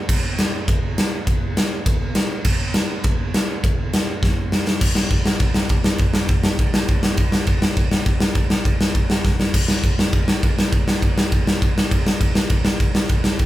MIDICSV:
0, 0, Header, 1, 2, 480
1, 0, Start_track
1, 0, Tempo, 295858
1, 123, Time_signature, 4, 2, 24, 8
1, 21833, End_track
2, 0, Start_track
2, 0, Title_t, "Drums"
2, 144, Note_on_c, 9, 36, 122
2, 147, Note_on_c, 9, 49, 104
2, 307, Note_off_c, 9, 36, 0
2, 309, Note_off_c, 9, 49, 0
2, 624, Note_on_c, 9, 51, 70
2, 628, Note_on_c, 9, 38, 100
2, 787, Note_off_c, 9, 51, 0
2, 790, Note_off_c, 9, 38, 0
2, 1104, Note_on_c, 9, 36, 109
2, 1112, Note_on_c, 9, 51, 77
2, 1266, Note_off_c, 9, 36, 0
2, 1274, Note_off_c, 9, 51, 0
2, 1589, Note_on_c, 9, 51, 74
2, 1592, Note_on_c, 9, 38, 118
2, 1751, Note_off_c, 9, 51, 0
2, 1754, Note_off_c, 9, 38, 0
2, 2061, Note_on_c, 9, 36, 104
2, 2061, Note_on_c, 9, 51, 81
2, 2223, Note_off_c, 9, 36, 0
2, 2223, Note_off_c, 9, 51, 0
2, 2546, Note_on_c, 9, 51, 68
2, 2550, Note_on_c, 9, 38, 112
2, 2709, Note_off_c, 9, 51, 0
2, 2712, Note_off_c, 9, 38, 0
2, 3019, Note_on_c, 9, 36, 120
2, 3020, Note_on_c, 9, 51, 84
2, 3181, Note_off_c, 9, 36, 0
2, 3182, Note_off_c, 9, 51, 0
2, 3488, Note_on_c, 9, 51, 76
2, 3491, Note_on_c, 9, 38, 104
2, 3650, Note_off_c, 9, 51, 0
2, 3653, Note_off_c, 9, 38, 0
2, 3967, Note_on_c, 9, 49, 99
2, 3975, Note_on_c, 9, 36, 116
2, 4129, Note_off_c, 9, 49, 0
2, 4137, Note_off_c, 9, 36, 0
2, 4446, Note_on_c, 9, 51, 69
2, 4449, Note_on_c, 9, 38, 107
2, 4608, Note_off_c, 9, 51, 0
2, 4611, Note_off_c, 9, 38, 0
2, 4929, Note_on_c, 9, 51, 70
2, 4938, Note_on_c, 9, 36, 119
2, 5091, Note_off_c, 9, 51, 0
2, 5100, Note_off_c, 9, 36, 0
2, 5423, Note_on_c, 9, 51, 69
2, 5426, Note_on_c, 9, 38, 109
2, 5585, Note_off_c, 9, 51, 0
2, 5588, Note_off_c, 9, 38, 0
2, 5901, Note_on_c, 9, 36, 113
2, 5909, Note_on_c, 9, 51, 71
2, 6063, Note_off_c, 9, 36, 0
2, 6071, Note_off_c, 9, 51, 0
2, 6383, Note_on_c, 9, 51, 70
2, 6386, Note_on_c, 9, 38, 103
2, 6545, Note_off_c, 9, 51, 0
2, 6548, Note_off_c, 9, 38, 0
2, 6858, Note_on_c, 9, 36, 116
2, 6871, Note_on_c, 9, 38, 70
2, 7020, Note_off_c, 9, 36, 0
2, 7033, Note_off_c, 9, 38, 0
2, 7338, Note_on_c, 9, 38, 94
2, 7500, Note_off_c, 9, 38, 0
2, 7583, Note_on_c, 9, 38, 99
2, 7745, Note_off_c, 9, 38, 0
2, 7804, Note_on_c, 9, 49, 69
2, 7804, Note_on_c, 9, 57, 123
2, 7808, Note_on_c, 9, 36, 108
2, 7966, Note_off_c, 9, 49, 0
2, 7966, Note_off_c, 9, 57, 0
2, 7970, Note_off_c, 9, 36, 0
2, 8036, Note_on_c, 9, 38, 100
2, 8198, Note_off_c, 9, 38, 0
2, 8283, Note_on_c, 9, 49, 55
2, 8285, Note_on_c, 9, 36, 104
2, 8445, Note_off_c, 9, 49, 0
2, 8448, Note_off_c, 9, 36, 0
2, 8526, Note_on_c, 9, 38, 103
2, 8688, Note_off_c, 9, 38, 0
2, 8755, Note_on_c, 9, 49, 68
2, 8763, Note_on_c, 9, 36, 115
2, 8917, Note_off_c, 9, 49, 0
2, 8925, Note_off_c, 9, 36, 0
2, 8995, Note_on_c, 9, 38, 95
2, 9157, Note_off_c, 9, 38, 0
2, 9234, Note_on_c, 9, 49, 57
2, 9247, Note_on_c, 9, 36, 112
2, 9397, Note_off_c, 9, 49, 0
2, 9409, Note_off_c, 9, 36, 0
2, 9481, Note_on_c, 9, 38, 115
2, 9643, Note_off_c, 9, 38, 0
2, 9705, Note_on_c, 9, 49, 58
2, 9726, Note_on_c, 9, 36, 108
2, 9868, Note_off_c, 9, 49, 0
2, 9888, Note_off_c, 9, 36, 0
2, 9954, Note_on_c, 9, 38, 95
2, 10116, Note_off_c, 9, 38, 0
2, 10196, Note_on_c, 9, 49, 58
2, 10205, Note_on_c, 9, 36, 115
2, 10358, Note_off_c, 9, 49, 0
2, 10368, Note_off_c, 9, 36, 0
2, 10440, Note_on_c, 9, 38, 109
2, 10602, Note_off_c, 9, 38, 0
2, 10688, Note_on_c, 9, 49, 63
2, 10691, Note_on_c, 9, 36, 114
2, 10850, Note_off_c, 9, 49, 0
2, 10853, Note_off_c, 9, 36, 0
2, 10933, Note_on_c, 9, 38, 117
2, 11095, Note_off_c, 9, 38, 0
2, 11166, Note_on_c, 9, 49, 60
2, 11175, Note_on_c, 9, 36, 110
2, 11328, Note_off_c, 9, 49, 0
2, 11337, Note_off_c, 9, 36, 0
2, 11404, Note_on_c, 9, 38, 114
2, 11566, Note_off_c, 9, 38, 0
2, 11637, Note_on_c, 9, 49, 70
2, 11648, Note_on_c, 9, 36, 107
2, 11799, Note_off_c, 9, 49, 0
2, 11810, Note_off_c, 9, 36, 0
2, 11880, Note_on_c, 9, 38, 101
2, 12042, Note_off_c, 9, 38, 0
2, 12113, Note_on_c, 9, 49, 68
2, 12126, Note_on_c, 9, 36, 102
2, 12275, Note_off_c, 9, 49, 0
2, 12288, Note_off_c, 9, 36, 0
2, 12364, Note_on_c, 9, 38, 117
2, 12526, Note_off_c, 9, 38, 0
2, 12602, Note_on_c, 9, 49, 64
2, 12604, Note_on_c, 9, 36, 111
2, 12764, Note_off_c, 9, 49, 0
2, 12766, Note_off_c, 9, 36, 0
2, 12841, Note_on_c, 9, 38, 100
2, 13003, Note_off_c, 9, 38, 0
2, 13074, Note_on_c, 9, 49, 57
2, 13078, Note_on_c, 9, 36, 113
2, 13237, Note_off_c, 9, 49, 0
2, 13240, Note_off_c, 9, 36, 0
2, 13311, Note_on_c, 9, 38, 115
2, 13473, Note_off_c, 9, 38, 0
2, 13545, Note_on_c, 9, 49, 63
2, 13553, Note_on_c, 9, 36, 104
2, 13707, Note_off_c, 9, 49, 0
2, 13715, Note_off_c, 9, 36, 0
2, 13794, Note_on_c, 9, 38, 105
2, 13956, Note_off_c, 9, 38, 0
2, 14038, Note_on_c, 9, 36, 106
2, 14043, Note_on_c, 9, 49, 58
2, 14200, Note_off_c, 9, 36, 0
2, 14205, Note_off_c, 9, 49, 0
2, 14287, Note_on_c, 9, 38, 112
2, 14449, Note_off_c, 9, 38, 0
2, 14519, Note_on_c, 9, 36, 106
2, 14520, Note_on_c, 9, 49, 63
2, 14681, Note_off_c, 9, 36, 0
2, 14682, Note_off_c, 9, 49, 0
2, 14760, Note_on_c, 9, 38, 100
2, 14922, Note_off_c, 9, 38, 0
2, 15001, Note_on_c, 9, 36, 107
2, 15002, Note_on_c, 9, 38, 68
2, 15163, Note_off_c, 9, 36, 0
2, 15165, Note_off_c, 9, 38, 0
2, 15246, Note_on_c, 9, 38, 96
2, 15408, Note_off_c, 9, 38, 0
2, 15478, Note_on_c, 9, 36, 113
2, 15478, Note_on_c, 9, 49, 68
2, 15478, Note_on_c, 9, 57, 106
2, 15640, Note_off_c, 9, 36, 0
2, 15640, Note_off_c, 9, 49, 0
2, 15640, Note_off_c, 9, 57, 0
2, 15711, Note_on_c, 9, 38, 100
2, 15873, Note_off_c, 9, 38, 0
2, 15958, Note_on_c, 9, 36, 107
2, 15964, Note_on_c, 9, 49, 60
2, 16120, Note_off_c, 9, 36, 0
2, 16126, Note_off_c, 9, 49, 0
2, 16209, Note_on_c, 9, 38, 121
2, 16371, Note_off_c, 9, 38, 0
2, 16433, Note_on_c, 9, 49, 66
2, 16437, Note_on_c, 9, 36, 117
2, 16596, Note_off_c, 9, 49, 0
2, 16599, Note_off_c, 9, 36, 0
2, 16677, Note_on_c, 9, 38, 107
2, 16839, Note_off_c, 9, 38, 0
2, 16923, Note_on_c, 9, 36, 107
2, 16929, Note_on_c, 9, 49, 61
2, 17086, Note_off_c, 9, 36, 0
2, 17091, Note_off_c, 9, 49, 0
2, 17174, Note_on_c, 9, 38, 113
2, 17337, Note_off_c, 9, 38, 0
2, 17401, Note_on_c, 9, 36, 116
2, 17404, Note_on_c, 9, 49, 61
2, 17563, Note_off_c, 9, 36, 0
2, 17566, Note_off_c, 9, 49, 0
2, 17646, Note_on_c, 9, 38, 103
2, 17809, Note_off_c, 9, 38, 0
2, 17885, Note_on_c, 9, 36, 100
2, 17888, Note_on_c, 9, 49, 59
2, 18047, Note_off_c, 9, 36, 0
2, 18050, Note_off_c, 9, 49, 0
2, 18132, Note_on_c, 9, 38, 118
2, 18294, Note_off_c, 9, 38, 0
2, 18367, Note_on_c, 9, 36, 117
2, 18367, Note_on_c, 9, 49, 66
2, 18529, Note_off_c, 9, 36, 0
2, 18529, Note_off_c, 9, 49, 0
2, 18615, Note_on_c, 9, 38, 105
2, 18777, Note_off_c, 9, 38, 0
2, 18853, Note_on_c, 9, 36, 111
2, 18860, Note_on_c, 9, 49, 62
2, 19015, Note_off_c, 9, 36, 0
2, 19022, Note_off_c, 9, 49, 0
2, 19107, Note_on_c, 9, 38, 122
2, 19269, Note_off_c, 9, 38, 0
2, 19329, Note_on_c, 9, 36, 107
2, 19332, Note_on_c, 9, 49, 73
2, 19492, Note_off_c, 9, 36, 0
2, 19495, Note_off_c, 9, 49, 0
2, 19575, Note_on_c, 9, 38, 112
2, 19737, Note_off_c, 9, 38, 0
2, 19805, Note_on_c, 9, 36, 115
2, 19807, Note_on_c, 9, 49, 66
2, 19967, Note_off_c, 9, 36, 0
2, 19970, Note_off_c, 9, 49, 0
2, 20042, Note_on_c, 9, 38, 124
2, 20205, Note_off_c, 9, 38, 0
2, 20272, Note_on_c, 9, 49, 63
2, 20282, Note_on_c, 9, 36, 127
2, 20434, Note_off_c, 9, 49, 0
2, 20445, Note_off_c, 9, 36, 0
2, 20517, Note_on_c, 9, 38, 115
2, 20679, Note_off_c, 9, 38, 0
2, 20766, Note_on_c, 9, 49, 67
2, 20768, Note_on_c, 9, 36, 104
2, 20928, Note_off_c, 9, 49, 0
2, 20930, Note_off_c, 9, 36, 0
2, 21007, Note_on_c, 9, 38, 112
2, 21169, Note_off_c, 9, 38, 0
2, 21239, Note_on_c, 9, 49, 68
2, 21249, Note_on_c, 9, 36, 116
2, 21402, Note_off_c, 9, 49, 0
2, 21411, Note_off_c, 9, 36, 0
2, 21481, Note_on_c, 9, 38, 97
2, 21643, Note_off_c, 9, 38, 0
2, 21723, Note_on_c, 9, 49, 55
2, 21733, Note_on_c, 9, 36, 105
2, 21833, Note_off_c, 9, 36, 0
2, 21833, Note_off_c, 9, 49, 0
2, 21833, End_track
0, 0, End_of_file